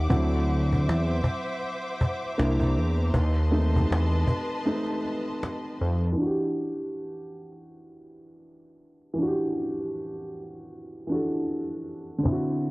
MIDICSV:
0, 0, Header, 1, 5, 480
1, 0, Start_track
1, 0, Tempo, 759494
1, 64, Time_signature, 4, 2, 24, 8
1, 8030, End_track
2, 0, Start_track
2, 0, Title_t, "String section"
2, 0, Program_c, 0, 48
2, 0, Note_on_c, 0, 78, 80
2, 0, Note_on_c, 0, 86, 92
2, 63, Note_on_c, 0, 76, 79
2, 64, Note_on_c, 0, 72, 86
2, 1478, Note_off_c, 0, 78, 0
2, 1502, Note_on_c, 0, 82, 64
2, 1958, Note_off_c, 0, 86, 0
2, 1964, Note_off_c, 0, 76, 0
2, 1965, Note_off_c, 0, 72, 0
2, 1978, Note_off_c, 0, 82, 0
2, 1981, Note_on_c, 0, 84, 85
2, 1982, Note_on_c, 0, 71, 83
2, 1982, Note_on_c, 0, 81, 85
2, 1983, Note_on_c, 0, 75, 74
2, 3883, Note_off_c, 0, 84, 0
2, 3884, Note_off_c, 0, 71, 0
2, 3884, Note_off_c, 0, 75, 0
2, 3884, Note_off_c, 0, 81, 0
2, 8030, End_track
3, 0, Start_track
3, 0, Title_t, "Felt piano"
3, 0, Program_c, 1, 0
3, 0, Control_c, 1, 64, 127
3, 60, Note_on_c, 1, 54, 51
3, 63, Note_on_c, 1, 60, 47
3, 67, Note_on_c, 1, 64, 54
3, 71, Control_c, 1, 64, 0
3, 196, Control_c, 1, 64, 127
3, 1477, Note_off_c, 1, 54, 0
3, 1478, Note_off_c, 1, 60, 0
3, 1480, Note_off_c, 1, 64, 0
3, 1503, Note_on_c, 1, 58, 55
3, 1505, Note_on_c, 1, 62, 54
3, 1510, Note_on_c, 1, 64, 60
3, 1511, Control_c, 1, 64, 0
3, 1639, Control_c, 1, 64, 127
3, 1842, Note_off_c, 1, 58, 0
3, 1843, Note_off_c, 1, 62, 0
3, 1845, Note_off_c, 1, 64, 0
3, 1991, Control_c, 1, 64, 0
3, 2088, Control_c, 1, 64, 127
3, 2220, Note_on_c, 1, 57, 54
3, 2224, Note_on_c, 1, 60, 46
3, 2229, Note_on_c, 1, 63, 56
3, 2917, Note_off_c, 1, 57, 0
3, 2918, Note_off_c, 1, 60, 0
3, 2921, Note_off_c, 1, 63, 0
3, 2942, Note_on_c, 1, 57, 45
3, 2944, Note_on_c, 1, 60, 45
3, 2948, Note_on_c, 1, 63, 50
3, 3159, Note_off_c, 1, 57, 0
3, 3160, Note_off_c, 1, 60, 0
3, 3162, Note_off_c, 1, 63, 0
3, 3869, Note_on_c, 1, 52, 57
3, 3899, Note_on_c, 1, 62, 52
3, 3913, Control_c, 1, 64, 0
3, 3927, Note_on_c, 1, 66, 50
3, 3957, Note_on_c, 1, 67, 61
3, 4019, Control_c, 1, 64, 127
3, 5764, Note_off_c, 1, 52, 0
3, 5774, Note_on_c, 1, 52, 67
3, 5794, Note_off_c, 1, 62, 0
3, 5803, Note_on_c, 1, 62, 57
3, 5810, Note_off_c, 1, 66, 0
3, 5825, Note_off_c, 1, 67, 0
3, 5832, Note_on_c, 1, 66, 61
3, 5861, Note_on_c, 1, 67, 70
3, 6974, Note_off_c, 1, 52, 0
3, 6989, Note_off_c, 1, 62, 0
3, 6996, Note_on_c, 1, 52, 45
3, 7004, Note_off_c, 1, 66, 0
3, 7010, Note_on_c, 1, 62, 52
3, 7019, Note_off_c, 1, 67, 0
3, 7025, Note_on_c, 1, 66, 49
3, 7040, Note_on_c, 1, 69, 57
3, 7700, Note_on_c, 1, 50, 65
3, 7730, Note_off_c, 1, 52, 0
3, 7730, Note_on_c, 1, 60, 59
3, 7737, Note_off_c, 1, 62, 0
3, 7744, Note_off_c, 1, 66, 0
3, 7751, Control_c, 1, 64, 0
3, 7752, Note_off_c, 1, 69, 0
3, 7758, Note_on_c, 1, 64, 55
3, 7788, Note_on_c, 1, 66, 68
3, 7877, Control_c, 1, 64, 127
3, 8030, Note_off_c, 1, 50, 0
3, 8030, Note_off_c, 1, 60, 0
3, 8030, Note_off_c, 1, 64, 0
3, 8030, Note_off_c, 1, 66, 0
3, 8030, End_track
4, 0, Start_track
4, 0, Title_t, "Analog synth bass"
4, 0, Program_c, 2, 38
4, 68, Note_on_c, 2, 38, 101
4, 550, Note_on_c, 2, 40, 96
4, 560, Note_off_c, 2, 38, 0
4, 768, Note_off_c, 2, 40, 0
4, 1511, Note_on_c, 2, 36, 103
4, 1751, Note_on_c, 2, 40, 87
4, 1761, Note_off_c, 2, 36, 0
4, 1969, Note_off_c, 2, 40, 0
4, 1988, Note_on_c, 2, 39, 111
4, 2441, Note_off_c, 2, 39, 0
4, 2471, Note_on_c, 2, 40, 102
4, 2689, Note_off_c, 2, 40, 0
4, 3672, Note_on_c, 2, 41, 75
4, 3889, Note_off_c, 2, 41, 0
4, 8030, End_track
5, 0, Start_track
5, 0, Title_t, "Cajon"
5, 64, Note_on_c, 9, 36, 117
5, 127, Note_off_c, 9, 36, 0
5, 315, Note_on_c, 9, 38, 41
5, 378, Note_off_c, 9, 38, 0
5, 457, Note_on_c, 9, 36, 73
5, 520, Note_off_c, 9, 36, 0
5, 562, Note_on_c, 9, 38, 106
5, 625, Note_off_c, 9, 38, 0
5, 782, Note_on_c, 9, 36, 90
5, 845, Note_off_c, 9, 36, 0
5, 915, Note_on_c, 9, 38, 25
5, 978, Note_off_c, 9, 38, 0
5, 1035, Note_on_c, 9, 38, 44
5, 1098, Note_off_c, 9, 38, 0
5, 1269, Note_on_c, 9, 36, 96
5, 1333, Note_off_c, 9, 36, 0
5, 1428, Note_on_c, 9, 38, 25
5, 1492, Note_off_c, 9, 38, 0
5, 1513, Note_on_c, 9, 38, 99
5, 1576, Note_off_c, 9, 38, 0
5, 1642, Note_on_c, 9, 36, 77
5, 1705, Note_off_c, 9, 36, 0
5, 1739, Note_on_c, 9, 38, 38
5, 1802, Note_off_c, 9, 38, 0
5, 1984, Note_on_c, 9, 36, 118
5, 2047, Note_off_c, 9, 36, 0
5, 2234, Note_on_c, 9, 38, 43
5, 2297, Note_off_c, 9, 38, 0
5, 2377, Note_on_c, 9, 36, 88
5, 2440, Note_off_c, 9, 36, 0
5, 2481, Note_on_c, 9, 38, 104
5, 2544, Note_off_c, 9, 38, 0
5, 2607, Note_on_c, 9, 38, 19
5, 2671, Note_off_c, 9, 38, 0
5, 2702, Note_on_c, 9, 36, 97
5, 2765, Note_off_c, 9, 36, 0
5, 2833, Note_on_c, 9, 38, 26
5, 2897, Note_off_c, 9, 38, 0
5, 2953, Note_on_c, 9, 38, 43
5, 3016, Note_off_c, 9, 38, 0
5, 3192, Note_on_c, 9, 38, 35
5, 3255, Note_off_c, 9, 38, 0
5, 3346, Note_on_c, 9, 38, 28
5, 3409, Note_off_c, 9, 38, 0
5, 3432, Note_on_c, 9, 38, 85
5, 3496, Note_off_c, 9, 38, 0
5, 3659, Note_on_c, 9, 38, 31
5, 3722, Note_off_c, 9, 38, 0
5, 3807, Note_on_c, 9, 38, 24
5, 3870, Note_off_c, 9, 38, 0
5, 7744, Note_on_c, 9, 36, 105
5, 7807, Note_off_c, 9, 36, 0
5, 7994, Note_on_c, 9, 38, 35
5, 8030, Note_off_c, 9, 38, 0
5, 8030, End_track
0, 0, End_of_file